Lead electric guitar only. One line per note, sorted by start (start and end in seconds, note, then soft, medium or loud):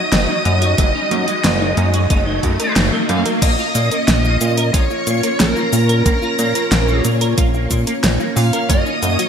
0.00 2.72 D#5 loud
3.09 3.18 F5 loud
3.42 4.78 D#5 loud
4.74 5.40 C#5 loud
5.40 6.02 A#4 medium
6.06 7.01 A#4 medium
8.37 8.69 F5 loud
8.70 9.29 D#5 loud